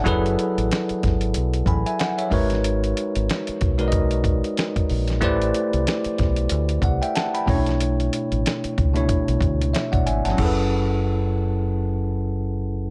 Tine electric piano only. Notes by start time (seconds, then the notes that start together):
Already playing: D5 F#5
0.04 F#3 E4 G#4 A4 B4
1.67 G#5 B5
1.86 E5 G#5
2.00 F#5
2.18 C#5 E5
2.30 G#3 D#4 F#4 A#4 B4 C#5
3.78 G#3 D#4 F#4 A#4 B4 D5
3.88 D#5
5.21 A3 E4 G4 B4 C5 D5
6.84 D5 F#5
7.02 E5 G5
7.16 F#5 A5
7.34 G5 B5
7.46 B2 A3 C#4 E4 C#5
7.54 D4
8.94 B2 A3 D4 E4 C#5
9.73 C#5 E5
9.92 D5 F#5
10.06 E5 G#5
10.25 F#5 A5
10.32 F#3 C#4
10.37 E4 G#4
10.42 A4 B4